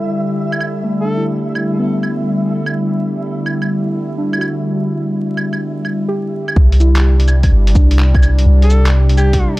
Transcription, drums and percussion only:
0.52 claves
0.61 claves
1.55 claves
2.03 claves
2.66 claves
3.46 claves
3.62 claves
4.33 claves
4.41 claves
5.37 claves
5.53 claves
5.85 claves
6.48 claves
6.56 kick
6.72 closed hi-hat
6.80 cabasa
6.96 clap, closed hi-hat
7.20 closed hi-hat
7.28 cabasa, claves
7.43 kick, closed hi-hat, claves
7.67 closed hi-hat
7.75 kick, cabasa
7.91 closed hi-hat
7.99 clap
8.15 kick, claves
8.23 cabasa, claves
8.39 closed hi-hat
8.62 closed hi-hat
8.70 cabasa
8.86 clap, closed hi-hat
9.09 closed hi-hat
9.17 cabasa, claves
9.33 kick, closed hi-hat

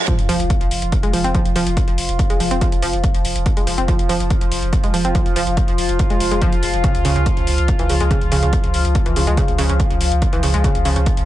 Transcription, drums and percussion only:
0.08 kick, closed hi-hat
0.19 closed hi-hat
0.29 open hi-hat
0.40 closed hi-hat
0.50 kick, closed hi-hat
0.61 closed hi-hat
0.71 open hi-hat
0.82 closed hi-hat
0.92 kick, closed hi-hat
1.03 closed hi-hat
1.13 open hi-hat
1.24 closed hi-hat
1.35 kick, closed hi-hat
1.45 closed hi-hat
1.56 open hi-hat
1.67 closed hi-hat
1.77 kick, closed hi-hat
1.88 closed hi-hat
1.98 open hi-hat
2.09 closed hi-hat
2.19 kick, closed hi-hat
2.30 closed hi-hat
2.40 open hi-hat
2.51 closed hi-hat
2.61 kick, closed hi-hat
2.72 closed hi-hat
2.82 open hi-hat
2.93 closed hi-hat
3.04 kick, closed hi-hat
3.15 closed hi-hat
3.25 open hi-hat
3.36 closed hi-hat
3.46 kick, closed hi-hat
3.57 closed hi-hat
3.67 open hi-hat
3.78 closed hi-hat
3.88 kick, closed hi-hat
3.99 closed hi-hat
4.09 open hi-hat
4.20 closed hi-hat
4.30 kick, closed hi-hat
4.41 closed hi-hat
4.52 open hi-hat
4.63 closed hi-hat
4.73 kick, closed hi-hat
4.84 closed hi-hat
4.94 open hi-hat
5.05 closed hi-hat
5.15 kick, closed hi-hat
5.26 closed hi-hat
5.36 open hi-hat
5.47 closed hi-hat
5.57 kick, closed hi-hat
5.68 closed hi-hat
5.78 open hi-hat
5.89 closed hi-hat
5.99 kick, closed hi-hat
6.10 closed hi-hat
6.20 open hi-hat
6.31 closed hi-hat
6.42 kick, closed hi-hat
6.52 closed hi-hat
6.63 open hi-hat
6.74 closed hi-hat
6.84 kick, closed hi-hat
6.95 closed hi-hat
7.05 open hi-hat
7.16 closed hi-hat
7.26 kick, closed hi-hat
7.37 closed hi-hat
7.47 open hi-hat
7.58 closed hi-hat
7.68 kick, closed hi-hat
7.79 closed hi-hat
7.89 open hi-hat
8.00 closed hi-hat
8.11 kick, closed hi-hat
8.21 closed hi-hat
8.32 open hi-hat
8.43 closed hi-hat
8.53 kick, closed hi-hat
8.64 closed hi-hat
8.74 open hi-hat
8.85 closed hi-hat
8.95 kick, closed hi-hat
9.06 closed hi-hat
9.16 open hi-hat
9.27 closed hi-hat
9.37 kick, closed hi-hat
9.48 closed hi-hat
9.58 open hi-hat
9.69 closed hi-hat
9.80 kick, closed hi-hat
9.91 closed hi-hat
10.01 open hi-hat
10.12 closed hi-hat
10.22 kick, closed hi-hat
10.33 closed hi-hat
10.43 open hi-hat
10.54 closed hi-hat
10.64 kick, closed hi-hat
10.75 closed hi-hat
10.85 open hi-hat
10.96 closed hi-hat
11.06 kick, closed hi-hat
11.17 closed hi-hat

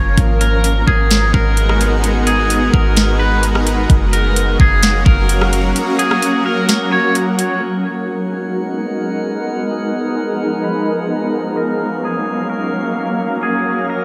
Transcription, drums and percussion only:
0.18 kick, closed hi-hat
0.41 closed hi-hat
0.64 closed hi-hat
0.88 kick
1.11 snare, closed hi-hat
1.34 kick
1.57 closed hi-hat
1.69 cross-stick
1.81 closed hi-hat
2.04 closed hi-hat
2.27 closed hi-hat
2.50 closed hi-hat
2.74 kick
2.97 snare, closed hi-hat
3.43 closed hi-hat
3.55 cross-stick
3.67 closed hi-hat
3.90 kick, closed hi-hat
4.13 closed hi-hat
4.36 closed hi-hat
4.60 kick
4.83 snare, closed hi-hat
5.06 kick
5.29 closed hi-hat
5.41 cross-stick
5.53 closed hi-hat
5.76 closed hi-hat
5.99 closed hi-hat
6.11 cross-stick
6.22 closed hi-hat
6.69 snare, closed hi-hat
7.15 closed hi-hat
7.39 closed hi-hat

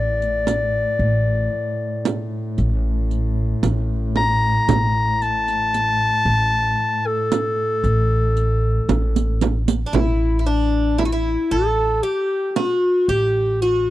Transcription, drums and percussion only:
0.22 riq
0.47 riq, frame drum
2.05 riq, frame drum
2.58 riq
3.11 riq
3.63 riq, frame drum
4.16 frame drum
4.69 riq, frame drum
5.22 riq
5.48 riq
5.74 riq
7.32 riq, frame drum
7.84 riq
8.37 riq
8.89 riq, frame drum
9.16 riq
9.41 riq, frame drum
9.68 riq
9.94 frame drum
10.99 frame drum
12.56 frame drum

